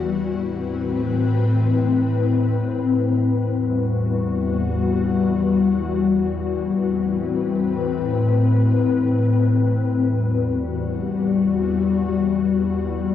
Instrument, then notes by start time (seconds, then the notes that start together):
ambient pad
Already playing: E3
0.04 A2 C4 B4
3.33 E2 E3 G3 F#4
6.62 A2 C4 B4
9.90 E2 E3 G3 F#4